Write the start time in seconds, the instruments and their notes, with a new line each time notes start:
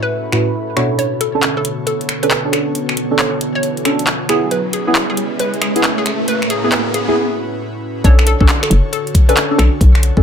Already playing: synth stab A2 C#4 E4 F#4 B4, analog synth pad A2 C#4 E4 F#4 B4, ambient pad A4 E5 B5 C#6
0.03 synth pluck B4
0.32 synth stab A2 C#4 E4 F#4 B4, finger snap
0.76 synth stab B2 D4 F#4 A4 C#5, finger snap
0.98 analog synth pad B2 D3 F#4 A4 C#5, ambient pad B3, synth pluck C#5, closed hi-hat, riser
1.21 synth pluck A4, closed hi-hat
1.30 ambient pad F#4
1.35 synth stab C#4 D4 A4
1.43 clap, closed hi-hat
1.57 synth pluck A4
1.65 closed hi-hat
1.87 synth pluck A4, closed hi-hat
2.01 closed hi-hat
2.09 finger snap, closed hi-hat
2.23 synth stab C#4 D4 A4, synth pluck B4, closed hi-hat
2.31 clap, closed hi-hat
2.45 synth stab C#4 D4 A4
2.53 synth pluck A4, finger snap, closed hi-hat
2.75 closed hi-hat
2.89 finger snap
2.97 closed hi-hat
3.11 synth stab C#4 D4 A4
3.19 synth pluck C#5, clap, closed hi-hat
3.41 closed hi-hat
3.55 synth pluck C#5
3.63 closed hi-hat
3.77 closed hi-hat
3.85 synth stab C#4 D4 A4, finger snap, closed hi-hat
3.99 closed hi-hat
4.07 clap, closed hi-hat
4.29 synth stab B3 E4 G#4, ambient pad C#4, analog synth pad C#4 E4 G#4 B4, finger snap, closed hi-hat
4.44 ambient pad G#4 E5
4.48 synth pluck B4, ambient pad C#5, closed hi-hat
4.73 synth pluck G#4, closed hi-hat
4.87 synth stab B3 E4 G#4
4.95 clap, closed hi-hat
5.10 synth pluck G#4
5.17 closed hi-hat
5.39 synth pluck B4, closed hi-hat
5.54 closed hi-hat
5.62 synth pluck G#4, finger snap, closed hi-hat
5.76 synth stab B3 E4 G#4, closed hi-hat
5.84 clap, closed hi-hat
5.98 synth pluck G#4
6.06 analog synth pad A2 E4 F#4, ambient pad A4, finger snap, closed hi-hat
6.28 synth pluck B4, closed hi-hat
6.42 finger snap
6.50 synth pluck G#4, closed hi-hat
6.64 synth stab B3 E4 G#4
6.72 synth pluck B4, clap, closed hi-hat
6.94 synth pluck G#4, closed hi-hat
7.08 synth stab B3 E4 G#4
8.04 fm bass B1, analog synth pad D3 F#4 A4 C#5, synth stab C#4 D4 A4, synth pluck C#5, kick, closed hi-hat
8.19 finger snap
8.27 synth pluck A4, closed hi-hat
8.40 fm bass B1, synth stab C#4 D4 A4, kick
8.49 clap, closed hi-hat
8.63 synth pluck A4, finger snap
8.70 fm bass F#1, closed hi-hat
8.93 synth pluck A4, closed hi-hat
9.07 closed hi-hat
9.15 kick, closed hi-hat
9.29 synth stab C#4 D4 A4, synth pluck B4, closed hi-hat
9.37 clap, closed hi-hat
9.51 synth stab C#4 D4 A4
9.58 fm bass B1, synth pluck A4, finger snap, closed hi-hat
9.81 fm bass B1, kick, closed hi-hat
9.95 finger snap
10.03 closed hi-hat
10.17 fm bass B1, synth stab C#4 D4 A4, kick